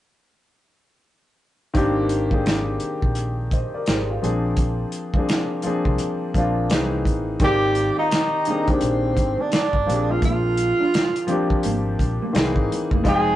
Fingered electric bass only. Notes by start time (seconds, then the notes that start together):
1.76 G#1
2.82 muted fingered electric bass stroke
3.03 A#1
3.88 G#1
4.24 A#1
5.65 muted fingered electric bass stroke
5.86 C2
6.35 A#1
6.71 C2
7.06 A1
7.41 G#1
8.83 A#1
9.17 G#1
9.74 G1
9.89 A#1
10.23 A#1
11.66 G#1
12.00 A#1
12.36 C2
12.57 G#1
12.92 F#1
13.06 F1